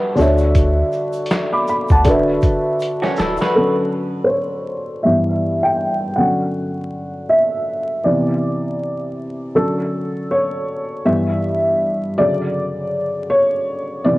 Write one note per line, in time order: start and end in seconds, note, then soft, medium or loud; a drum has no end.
0.00 0.18 G3 medium
0.00 0.15 D4 medium
0.00 0.14 F#4 medium
0.00 0.18 A4 medium
0.00 0.14 B4 medium
0.00 0.19 B4 medium
0.00 0.19 E5 medium
0.15 0.83 D2 medium
0.15 2.00 D3 medium
0.15 2.01 D4 medium
0.15 2.02 F#4 medium
0.15 shaker medium
0.19 2.02 C#5 medium
0.19 2.03 E5 medium
0.19 snare soft
0.19 shaker soft
0.38 shaker soft
0.55 kick medium
0.55 closed hi-hat medium
0.55 shaker medium
0.92 shaker medium
0.92 shaker soft
1.13 shaker medium
1.26 closed hi-hat medium
1.31 snare loud
1.31 clap medium
1.31 shaker medium
1.53 1.67 B5 medium
1.53 1.67 D6 medium
1.67 1.89 B5 medium
1.67 shaker soft
1.89 2.07 D2 loud
1.89 2.27 F#5 medium
1.89 2.26 A5 medium
1.89 kick loud
1.89 shaker soft
2.05 2.38 D1 medium
2.05 3.52 D3 medium
2.05 3.52 D4 medium
2.05 3.53 F#4 medium
2.05 kick medium
2.05 closed hi-hat medium
2.05 shaker medium
2.09 3.54 B4 medium
2.09 3.55 E5 medium
2.42 kick medium
2.42 closed hi-hat soft
2.42 shaker medium
2.42 shaker soft
2.80 closed hi-hat medium
2.80 shaker medium
3.02 3.17 C#4 medium
3.02 3.17 F#4 medium
3.02 snare medium
3.16 3.37 D1 medium
3.16 3.39 E4 medium
3.16 3.39 A4 medium
3.16 shaker medium
3.19 snare medium
3.19 shaker medium
3.37 3.76 F#4 medium
3.37 shaker soft
3.41 3.76 B4 medium
3.41 snare medium
3.55 4.64 D3 soft
3.55 4.64 F#3 soft
3.55 4.65 C#4 medium
3.55 4.26 A4 medium
4.24 4.30 C5 medium
4.29 5.07 C#5 medium
5.03 6.13 G2 soft
5.03 6.14 E3 soft
5.03 6.14 B3 medium
5.03 5.65 E5 medium
5.63 6.18 G5 loud
6.16 7.26 D3 soft
6.16 7.26 F#3 soft
6.16 7.27 C#4 soft
6.16 6.88 F#5 medium
7.29 8.01 E5 loud
8.04 8.57 C3 soft
8.04 8.58 E3 soft
8.04 8.58 B3 medium
8.04 9.13 D5 medium
9.55 10.07 D3 medium
9.55 10.07 F#3 soft
9.55 10.08 C#4 medium
9.55 10.26 A4 medium
10.31 11.08 C#5 medium
11.05 12.14 G2 medium
11.05 12.14 E3 soft
11.05 12.14 B3 medium
11.05 12.21 E5 medium
12.18 13.27 C#3 medium
12.18 13.26 D3 soft
12.18 13.27 F#3 soft
12.18 13.26 D5 medium
13.30 14.07 C#5 medium
14.05 14.18 C3 medium
14.05 14.18 E3 soft
14.05 14.18 B3 medium
14.05 14.18 D5 medium